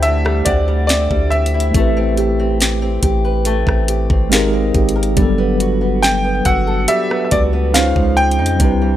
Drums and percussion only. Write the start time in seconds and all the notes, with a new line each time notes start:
0.03 closed hi-hat
0.26 cross-stick
0.46 kick, closed hi-hat
0.89 snare, closed hi-hat
1.11 kick
1.32 closed hi-hat
1.46 closed hi-hat
1.60 closed hi-hat
1.74 kick, closed hi-hat
2.17 closed hi-hat
2.61 snare, closed hi-hat
3.03 kick, closed hi-hat
3.45 closed hi-hat
3.67 kick, cross-stick
3.88 closed hi-hat
4.10 kick
4.32 snare, closed hi-hat
4.74 kick, closed hi-hat
4.89 closed hi-hat
5.03 closed hi-hat
5.17 kick, closed hi-hat
5.60 closed hi-hat
6.03 snare, closed hi-hat
6.45 kick, closed hi-hat
6.88 closed hi-hat
7.11 cross-stick
7.31 kick, closed hi-hat
7.74 snare, closed hi-hat
7.96 kick
8.17 closed hi-hat
8.31 closed hi-hat
8.46 closed hi-hat
8.60 kick, closed hi-hat